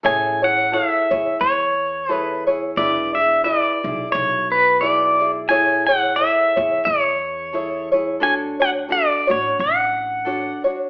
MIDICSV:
0, 0, Header, 1, 4, 480
1, 0, Start_track
1, 0, Key_signature, 3, "major"
1, 0, Tempo, 681818
1, 25, Time_signature, 4, 2, 24, 8
1, 7672, End_track
2, 0, Start_track
2, 0, Title_t, "Pedal steel guitar"
2, 0, Program_c, 0, 26
2, 41, Note_on_c, 0, 80, 91
2, 309, Note_off_c, 0, 80, 0
2, 312, Note_on_c, 0, 78, 80
2, 518, Note_on_c, 0, 76, 73
2, 519, Note_off_c, 0, 78, 0
2, 991, Note_on_c, 0, 73, 69
2, 1006, Note_off_c, 0, 76, 0
2, 1498, Note_off_c, 0, 73, 0
2, 1498, Note_on_c, 0, 71, 69
2, 1713, Note_off_c, 0, 71, 0
2, 1953, Note_on_c, 0, 74, 71
2, 2214, Note_off_c, 0, 74, 0
2, 2216, Note_on_c, 0, 76, 71
2, 2422, Note_off_c, 0, 76, 0
2, 2425, Note_on_c, 0, 74, 70
2, 2899, Note_off_c, 0, 74, 0
2, 2902, Note_on_c, 0, 73, 77
2, 3179, Note_on_c, 0, 71, 75
2, 3185, Note_off_c, 0, 73, 0
2, 3385, Note_on_c, 0, 74, 77
2, 3393, Note_off_c, 0, 71, 0
2, 3735, Note_off_c, 0, 74, 0
2, 3863, Note_on_c, 0, 80, 89
2, 4127, Note_off_c, 0, 80, 0
2, 4129, Note_on_c, 0, 78, 82
2, 4337, Note_on_c, 0, 76, 79
2, 4349, Note_off_c, 0, 78, 0
2, 4824, Note_on_c, 0, 73, 75
2, 4836, Note_off_c, 0, 76, 0
2, 5549, Note_off_c, 0, 73, 0
2, 5794, Note_on_c, 0, 80, 92
2, 5867, Note_off_c, 0, 80, 0
2, 6067, Note_on_c, 0, 78, 80
2, 6122, Note_off_c, 0, 78, 0
2, 6281, Note_on_c, 0, 74, 70
2, 6553, Note_off_c, 0, 74, 0
2, 6556, Note_on_c, 0, 73, 72
2, 6761, Note_off_c, 0, 73, 0
2, 6761, Note_on_c, 0, 78, 70
2, 7476, Note_off_c, 0, 78, 0
2, 7672, End_track
3, 0, Start_track
3, 0, Title_t, "Ukulele"
3, 0, Program_c, 1, 24
3, 22, Note_on_c, 1, 69, 66
3, 24, Note_on_c, 1, 64, 69
3, 28, Note_on_c, 1, 68, 76
3, 32, Note_on_c, 1, 73, 74
3, 287, Note_off_c, 1, 73, 0
3, 292, Note_off_c, 1, 68, 0
3, 293, Note_off_c, 1, 69, 0
3, 296, Note_on_c, 1, 73, 45
3, 297, Note_off_c, 1, 64, 0
3, 300, Note_on_c, 1, 68, 42
3, 307, Note_on_c, 1, 64, 36
3, 504, Note_off_c, 1, 73, 0
3, 507, Note_off_c, 1, 64, 0
3, 507, Note_off_c, 1, 68, 0
3, 507, Note_on_c, 1, 69, 51
3, 516, Note_on_c, 1, 64, 54
3, 519, Note_on_c, 1, 68, 59
3, 521, Note_on_c, 1, 73, 54
3, 769, Note_off_c, 1, 73, 0
3, 774, Note_off_c, 1, 69, 0
3, 777, Note_on_c, 1, 73, 44
3, 779, Note_off_c, 1, 68, 0
3, 783, Note_off_c, 1, 64, 0
3, 787, Note_on_c, 1, 68, 45
3, 794, Note_on_c, 1, 64, 37
3, 1466, Note_off_c, 1, 73, 0
3, 1468, Note_off_c, 1, 68, 0
3, 1469, Note_on_c, 1, 69, 49
3, 1470, Note_off_c, 1, 64, 0
3, 1470, Note_on_c, 1, 64, 47
3, 1477, Note_on_c, 1, 68, 58
3, 1480, Note_on_c, 1, 73, 55
3, 1729, Note_off_c, 1, 73, 0
3, 1734, Note_off_c, 1, 69, 0
3, 1735, Note_off_c, 1, 68, 0
3, 1737, Note_on_c, 1, 73, 50
3, 1740, Note_off_c, 1, 64, 0
3, 1743, Note_on_c, 1, 68, 46
3, 1753, Note_on_c, 1, 64, 41
3, 1946, Note_off_c, 1, 64, 0
3, 1946, Note_off_c, 1, 73, 0
3, 1949, Note_off_c, 1, 68, 0
3, 1953, Note_on_c, 1, 71, 65
3, 1955, Note_on_c, 1, 64, 75
3, 1956, Note_on_c, 1, 68, 73
3, 1961, Note_on_c, 1, 74, 71
3, 2209, Note_off_c, 1, 74, 0
3, 2213, Note_off_c, 1, 68, 0
3, 2215, Note_off_c, 1, 71, 0
3, 2217, Note_on_c, 1, 74, 42
3, 2219, Note_off_c, 1, 64, 0
3, 2222, Note_on_c, 1, 68, 40
3, 2229, Note_on_c, 1, 64, 35
3, 2417, Note_off_c, 1, 64, 0
3, 2418, Note_off_c, 1, 74, 0
3, 2420, Note_on_c, 1, 71, 53
3, 2422, Note_off_c, 1, 68, 0
3, 2425, Note_on_c, 1, 64, 56
3, 2430, Note_on_c, 1, 68, 60
3, 2433, Note_on_c, 1, 74, 55
3, 2689, Note_off_c, 1, 68, 0
3, 2694, Note_off_c, 1, 64, 0
3, 2696, Note_off_c, 1, 71, 0
3, 2697, Note_on_c, 1, 68, 46
3, 2702, Note_off_c, 1, 74, 0
3, 2707, Note_on_c, 1, 64, 35
3, 3384, Note_on_c, 1, 71, 49
3, 3386, Note_off_c, 1, 68, 0
3, 3389, Note_off_c, 1, 64, 0
3, 3389, Note_on_c, 1, 64, 55
3, 3392, Note_on_c, 1, 68, 59
3, 3397, Note_on_c, 1, 74, 55
3, 3648, Note_off_c, 1, 74, 0
3, 3653, Note_off_c, 1, 71, 0
3, 3656, Note_on_c, 1, 74, 44
3, 3657, Note_off_c, 1, 68, 0
3, 3660, Note_off_c, 1, 64, 0
3, 3666, Note_on_c, 1, 68, 45
3, 3668, Note_on_c, 1, 64, 36
3, 3858, Note_off_c, 1, 64, 0
3, 3861, Note_on_c, 1, 69, 67
3, 3862, Note_off_c, 1, 68, 0
3, 3866, Note_off_c, 1, 74, 0
3, 3867, Note_on_c, 1, 64, 66
3, 3870, Note_on_c, 1, 68, 68
3, 3876, Note_on_c, 1, 73, 82
3, 4132, Note_off_c, 1, 73, 0
3, 4136, Note_off_c, 1, 69, 0
3, 4139, Note_off_c, 1, 64, 0
3, 4140, Note_off_c, 1, 68, 0
3, 4140, Note_on_c, 1, 73, 43
3, 4151, Note_on_c, 1, 68, 40
3, 4153, Note_on_c, 1, 64, 33
3, 4343, Note_off_c, 1, 64, 0
3, 4346, Note_off_c, 1, 73, 0
3, 4349, Note_off_c, 1, 68, 0
3, 4349, Note_on_c, 1, 69, 50
3, 4352, Note_on_c, 1, 64, 51
3, 4358, Note_on_c, 1, 68, 58
3, 4362, Note_on_c, 1, 73, 56
3, 4610, Note_off_c, 1, 73, 0
3, 4615, Note_off_c, 1, 68, 0
3, 4615, Note_off_c, 1, 69, 0
3, 4618, Note_on_c, 1, 73, 50
3, 4620, Note_off_c, 1, 64, 0
3, 4623, Note_on_c, 1, 68, 40
3, 4630, Note_on_c, 1, 64, 38
3, 5296, Note_off_c, 1, 64, 0
3, 5297, Note_off_c, 1, 73, 0
3, 5299, Note_off_c, 1, 68, 0
3, 5300, Note_on_c, 1, 69, 54
3, 5305, Note_on_c, 1, 64, 53
3, 5308, Note_on_c, 1, 68, 52
3, 5314, Note_on_c, 1, 73, 55
3, 5565, Note_off_c, 1, 73, 0
3, 5570, Note_off_c, 1, 69, 0
3, 5573, Note_off_c, 1, 68, 0
3, 5573, Note_on_c, 1, 73, 54
3, 5578, Note_off_c, 1, 64, 0
3, 5581, Note_on_c, 1, 68, 44
3, 5588, Note_on_c, 1, 64, 45
3, 5774, Note_on_c, 1, 69, 67
3, 5776, Note_off_c, 1, 73, 0
3, 5777, Note_off_c, 1, 64, 0
3, 5780, Note_on_c, 1, 62, 67
3, 5781, Note_off_c, 1, 68, 0
3, 5784, Note_on_c, 1, 66, 71
3, 5785, Note_on_c, 1, 73, 74
3, 6043, Note_off_c, 1, 73, 0
3, 6051, Note_off_c, 1, 66, 0
3, 6052, Note_off_c, 1, 69, 0
3, 6052, Note_on_c, 1, 73, 45
3, 6055, Note_off_c, 1, 62, 0
3, 6059, Note_on_c, 1, 66, 37
3, 6064, Note_on_c, 1, 62, 39
3, 6253, Note_off_c, 1, 73, 0
3, 6256, Note_off_c, 1, 62, 0
3, 6256, Note_on_c, 1, 69, 52
3, 6259, Note_off_c, 1, 66, 0
3, 6264, Note_on_c, 1, 62, 58
3, 6267, Note_on_c, 1, 66, 64
3, 6523, Note_off_c, 1, 69, 0
3, 6526, Note_off_c, 1, 66, 0
3, 6526, Note_on_c, 1, 73, 50
3, 6529, Note_off_c, 1, 62, 0
3, 6535, Note_on_c, 1, 66, 43
3, 6537, Note_on_c, 1, 62, 39
3, 7216, Note_off_c, 1, 62, 0
3, 7216, Note_on_c, 1, 69, 48
3, 7221, Note_off_c, 1, 66, 0
3, 7224, Note_on_c, 1, 66, 58
3, 7225, Note_on_c, 1, 62, 54
3, 7228, Note_off_c, 1, 73, 0
3, 7230, Note_on_c, 1, 73, 51
3, 7482, Note_off_c, 1, 73, 0
3, 7487, Note_off_c, 1, 66, 0
3, 7491, Note_on_c, 1, 73, 48
3, 7492, Note_off_c, 1, 69, 0
3, 7496, Note_on_c, 1, 66, 43
3, 7497, Note_off_c, 1, 62, 0
3, 7505, Note_on_c, 1, 62, 43
3, 7672, Note_off_c, 1, 62, 0
3, 7672, Note_off_c, 1, 66, 0
3, 7672, Note_off_c, 1, 73, 0
3, 7672, End_track
4, 0, Start_track
4, 0, Title_t, "Upright bass"
4, 0, Program_c, 2, 32
4, 32, Note_on_c, 2, 33, 77
4, 519, Note_off_c, 2, 33, 0
4, 782, Note_on_c, 2, 40, 80
4, 916, Note_off_c, 2, 40, 0
4, 991, Note_on_c, 2, 40, 84
4, 1950, Note_on_c, 2, 28, 83
4, 1961, Note_off_c, 2, 40, 0
4, 2438, Note_off_c, 2, 28, 0
4, 2705, Note_on_c, 2, 35, 82
4, 2838, Note_off_c, 2, 35, 0
4, 2919, Note_on_c, 2, 35, 89
4, 3874, Note_off_c, 2, 35, 0
4, 3874, Note_on_c, 2, 33, 80
4, 4361, Note_off_c, 2, 33, 0
4, 4626, Note_on_c, 2, 40, 82
4, 4759, Note_off_c, 2, 40, 0
4, 4833, Note_on_c, 2, 40, 82
4, 5792, Note_off_c, 2, 40, 0
4, 5792, Note_on_c, 2, 38, 77
4, 6279, Note_off_c, 2, 38, 0
4, 6546, Note_on_c, 2, 33, 80
4, 6679, Note_off_c, 2, 33, 0
4, 6754, Note_on_c, 2, 33, 82
4, 7374, Note_off_c, 2, 33, 0
4, 7672, End_track
0, 0, End_of_file